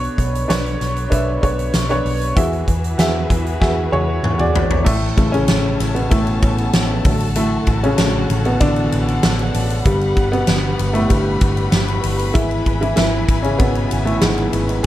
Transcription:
Already playing: upright piano B2 D4 B4 C#5, string section D3 B3 C#5
0.04 closed hi-hat
0.18 picked electric bass B1, kick, closed hi-hat
0.35 closed hi-hat
0.48 picked electric bass B1, upright piano D4 B4 C#5, snare, closed hi-hat
0.66 closed hi-hat
0.80 picked electric bass B1, snare, closed hi-hat
0.96 closed hi-hat
1.10 picked electric bass B1, upright piano D4 B4 E5, kick, closed hi-hat
1.42 picked electric bass B1, upright piano D4 B4 C#5, kick, closed hi-hat
1.59 closed hi-hat
1.74 picked electric bass B1, snare, closed hi-hat
1.89 upright piano D4 B4 C#5, closed hi-hat
2.05 picked electric bass B1, open hi-hat
2.21 closed hi-hat
2.36 picked electric bass E2, string section E3 E4 F#4 G#4 B4, upright piano E3 F#4 G#4 E5, kick, closed hi-hat
2.53 closed hi-hat
2.68 picked electric bass E2, kick, closed hi-hat
2.84 closed hi-hat
2.98 picked electric bass E2, upright piano F#4 G#4 E5, snare, closed hi-hat
3.30 picked electric bass E2, kick, closed hi-hat
3.46 closed hi-hat
3.60 picked electric bass E2, upright piano F#4 G#4 E5, kick, snare
3.91 picked electric bass E2, upright piano F#4 G#4 C#5, high tom
4.23 picked electric bass E2, mid tom
4.38 upright piano F#4 G#4 D5, mid tom
4.55 picked electric bass E2, floor tom
4.71 floor tom
4.84 picked electric bass A1, upright piano A2 A3, string section E4 A4 C#5 A5, kick, crash
5.16 picked electric bass A1, upright piano C#3 E3 A3, kick, ride
5.32 upright piano C#3 C#4, ride
5.48 picked electric bass A1, snare, ride
5.80 picked electric bass A1, snare, ride
5.95 upright piano B2 B3, ride
6.10 picked electric bass A1, upright piano A2 A3, kick, ride
6.27 ride
6.42 picked electric bass A1, kick, ride
6.58 ride
6.73 picked electric bass A1, snare, ride
7.04 picked electric bass A1, upright piano D3 F#3 A3, string section F#4 F#5, kick, open hi-hat, ride
7.20 ride
7.35 upright piano A2 A3, hi-hat pedal, ride
7.67 picked electric bass A1, kick, ride
7.83 upright piano C#3 C#4, ride
7.98 picked electric bass A1, upright piano D3 F#3 A3, snare, ride
8.30 picked electric bass A1, ride
8.45 upright piano B2 B3, ride
8.60 picked electric bass A1, upright piano D3 D4, kick, ride
8.76 ride
8.92 picked electric bass A1, ride
9.08 ride
9.23 picked electric bass A1, snare, ride
9.39 ride
9.54 picked electric bass A1, open hi-hat, ride
9.70 ride
9.85 picked electric bass G1, upright piano G2 D3 G3 B3, string section G4 B4 B5, kick, hi-hat pedal, ride
10.01 ride
10.17 picked electric bass G1, kick, ride
10.32 upright piano B2 B3, ride
10.47 picked electric bass G1, snare, ride
10.79 picked electric bass G1, ride
10.93 upright piano A2 A3, ride
11.09 picked electric bass G1, upright piano G2 D3 G3 B3, kick, ride
11.41 picked electric bass G1, kick, ride
11.57 ride
11.72 picked electric bass G1, snare, ride
11.88 ride
12.03 picked electric bass G1, open hi-hat, ride
12.19 ride
12.34 picked electric bass G#1, upright piano E3 G#3 B3 E4, string section E4 G#5, kick, hi-hat pedal, ride
12.51 ride
12.66 picked electric bass G#1, kick, ride
12.81 upright piano E3 E4, ride
12.96 picked electric bass G#1, upright piano E3 E4, snare, ride
13.29 picked electric bass G#1, kick, ride
13.43 upright piano C#3 C#4, ride
13.59 picked electric bass G#1, upright piano B2 B3, kick, ride
13.75 ride
13.91 picked electric bass G#1, ride
14.05 upright piano A2 A3, ride
14.21 picked electric bass G#1, upright piano G#2 G#3, snare, ride
14.38 ride
14.53 picked electric bass G#1, ride
14.69 ride

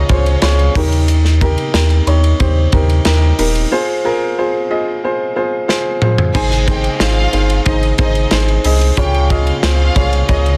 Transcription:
Already playing: upright piano C#3 F4 G#4 C5 C#5
0.09 sub bass C#2, violin section C#4 C#5, upright piano F4 G#4 C5, kick, ride
0.26 ride
0.42 sub bass C#2, upright piano F4 G#4 C#5, snare, ride
0.59 ride
0.75 sub bass D#2, upright piano D#3 D#4 G4 A#4, kick, open hi-hat, ride
0.92 ride
1.08 hi-hat pedal, ride
1.25 snare
1.41 upright piano D#4 G4 A#4, kick, ride
1.58 ride
1.74 sub bass D#2, upright piano D#4 G4 A#4, snare, ride
1.90 ride
2.07 sub bass D#2, upright piano D#4 G4 C#5, ride
2.24 ride
2.39 sub bass D#2, upright piano D#4 G4 C5, kick, ride
2.72 sub bass D#2, upright piano D#4 G4 A#4, kick, ride
2.90 ride
3.05 sub bass D#2, upright piano D#4 G4 A#4, snare, ride
3.38 sub bass D#1, upright piano D#4 G4 A#4, open hi-hat, ride
3.55 ride
3.71 upright piano F4 G#4 C5
4.04 upright piano F4 G#4 A#4
4.38 upright piano F4 G#4 C5
4.70 upright piano F4 G#4 D#5
5.04 upright piano F4 G#4 C5
5.36 upright piano F4 G#4 C5
5.68 upright piano F4 G#4 C5, snare
6.02 upright piano F4 G#4 C5, mid tom
6.18 floor tom
6.34 sub bass G#1, upright piano G#2 D#4 G#4 C5, violin section G#4 G#5, kick, crash
6.51 snare, ride
6.67 upright piano D#4 G#4 C5, violin section G4 G5, kick, ride
6.84 ride
7.00 sub bass G#1, upright piano D#4 G#4 C5, violin section F4 F5, snare, ride
7.33 sub bass G1, upright piano D#4 G#4 C5, ride
7.50 ride
7.66 sub bass G#1, upright piano D#4 G#4 C5, violin section D#4 D#5, kick, ride
7.83 ride
7.98 sub bass G#1, upright piano D#4 G#4 C5, violin section D#4 D#5, kick, ride
8.15 ride
8.31 sub bass G#1, upright piano D#4 G#4 C5, snare, ride
8.48 ride
8.64 sub bass C2, upright piano D#4 G#4 D#5, open hi-hat, ride
8.81 ride
8.97 sub bass C#2, upright piano C#3 F4 G#4 C#5, violin section G4 G5, kick, hi-hat pedal, ride
9.14 ride
9.30 upright piano F4 G#4 D#5, violin section F4 F5, kick, ride
9.47 ride
9.62 sub bass C#2, upright piano F4 G#4 C5, violin section F4 F5, snare, ride
9.95 sub bass C2, upright piano F4 G#4 C#5, kick, ride
10.13 ride
10.28 sub bass C#2, violin section D#4 D#5, upright piano F4 G#4 C#5, kick, ride
10.46 ride

